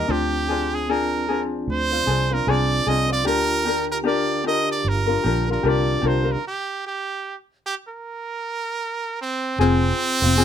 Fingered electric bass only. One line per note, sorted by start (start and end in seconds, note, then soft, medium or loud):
0.09 1.63 D2 loud
1.68 2.00 D2 medium
2.07 2.40 C2 medium
2.47 2.79 C2 medium
2.87 3.26 C2 medium
3.26 4.80 D2 loud
4.85 5.17 G1 medium
5.25 5.57 A#1 medium
5.64 5.96 C2 medium
6.03 6.35 C2 medium
9.58 9.91 F1 loud
10.22 10.44 F1 medium